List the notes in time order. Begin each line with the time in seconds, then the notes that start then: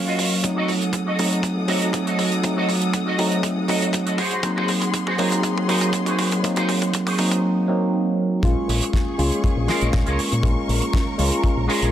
Already playing: F#3 A#3 C#4 F5 C#6
0.06 F4 F#4 D#5
0.19 open hi-hat, mid tom
0.32 A#1
0.43 F2 F#3 A3 C4 D#4 A4 F#5 D#6, kick, closed hi-hat, mid tom
0.56 F#4 A4 D#5
0.68 F2, open hi-hat, mid tom
0.81 muted clean electric guitar stroke, closed hi-hat
0.93 kick, closed hi-hat, mid tom
1.06 F#4 A4 D#5
1.18 A2 F#3 A3 C4 D#4, open hi-hat, mid tom
1.33 closed hi-hat
1.43 muted fingered electric bass stroke, kick, closed hi-hat, mid tom
1.56 F2
1.68 F#3 A3 C4 D#4 F#4 A4 D#5, open hi-hat, mid tom
1.82 F2, closed hi-hat
1.93 F2, kick, closed hi-hat, mid tom
2.06 A2 F#4 A4 D#5, closed hi-hat
2.19 muted fingered electric bass stroke, open hi-hat, mid tom
2.32 F1, closed hi-hat
2.42 F2 F#3 A3 C4 D#4, kick, closed hi-hat, mid tom
2.56 F#4 A4 D#5
2.68 F2, open hi-hat, mid tom
2.81 muted clean electric guitar stroke, closed hi-hat
2.93 kick, closed hi-hat, mid tom
3.06 F#4 A4 D#5
3.18 A2 F#3 A3 C4 D#4, open hi-hat, mid tom
3.32 closed hi-hat
3.43 kick, closed hi-hat, mid tom
3.57 F2
3.67 F#3 A3 C4 D#4 F#4 A4 D#5, open hi-hat, mid tom
3.82 F2, closed hi-hat
3.93 F2, kick, closed hi-hat, mid tom
4.06 A2 F#4 A4 D#5, closed hi-hat
4.18 F#4 G#4 C5 C6, open hi-hat, mid tom
4.31 G#2, closed hi-hat
4.42 G#1 F#3 A#3 C4 D#4, kick, closed hi-hat, mid tom
4.56 F#4 G#4 C5, mid tom
4.68 G#1, open hi-hat, mid tom
4.81 muted clean electric guitar stroke, closed hi-hat, mid tom
4.94 kick, closed hi-hat, mid tom
5.06 F#4 G#4 C5, mid tom
5.18 C2 F#3 A#3 C4 D#4, open hi-hat, mid tom
5.32 closed hi-hat, mid tom
5.43 kick, closed hi-hat, mid tom
5.57 G#1, mid tom
5.67 F#3 A#3 C4 D#4 F#4 G#4 C5, open hi-hat, mid tom
5.81 G#1, closed hi-hat, mid tom
5.93 G#1, kick, closed hi-hat, mid tom
6.06 C2 F#4 G#4 C5, closed hi-hat, mid tom
6.18 muted fingered electric bass stroke, open hi-hat, mid tom
6.31 G#2, closed hi-hat, mid tom
6.43 G#1 F#3 A#3 C4 D#4, kick, closed hi-hat, mid tom
6.56 F#4 G#4 C5, closed hi-hat, mid tom
6.69 G#1, open hi-hat, mid tom
6.81 muted clean electric guitar stroke, closed hi-hat, mid tom
6.94 kick, closed hi-hat, mid tom
7.06 F#4 G#4 C5, open hi-hat, mid tom
7.18 C2 F#3 A#3 C4 D#4, open hi-hat, mid tom
7.31 closed hi-hat, mid tom
7.68 F#3 A#3 C4 D#4
8.42 A#1 G#3 A#3 C#4 F4 G#4 C#6, kick, closed hi-hat
8.68 A#1, muted clean electric guitar stroke, open hi-hat
8.81 muted clean electric guitar stroke, closed hi-hat
8.93 muted clean electric guitar stroke, kick, snare, closed hi-hat
9.18 C#2 G#3 C#4 F4, open hi-hat
9.32 closed hi-hat
9.44 muted fingered electric bass stroke, kick, closed hi-hat
9.57 A#1
9.67 G#3 C#4 F4 G#4 A#4 D#5, snare, open hi-hat
9.81 A#1, closed hi-hat
9.93 A#1, kick, snare, closed hi-hat
10.06 C#2 F4 G#4 A#4 C#5, closed hi-hat
10.19 muted fingered electric bass stroke, open hi-hat
10.31 A#2, muted clean electric guitar stroke, closed hi-hat
10.43 A#1 G#3 C#4 F4 A#4, kick, closed hi-hat
10.67 A#1, muted clean electric guitar stroke, open hi-hat
10.81 muted clean electric guitar stroke, closed hi-hat
10.92 muted clean electric guitar stroke, kick, snare, closed hi-hat
11.18 C#2 G#3 C#4 F4, open hi-hat
11.32 closed hi-hat
11.44 kick, closed hi-hat
11.57 A#1
11.67 G#3 C#4 F4 G#4 A#4 C#5, open hi-hat
11.82 A#1, closed hi-hat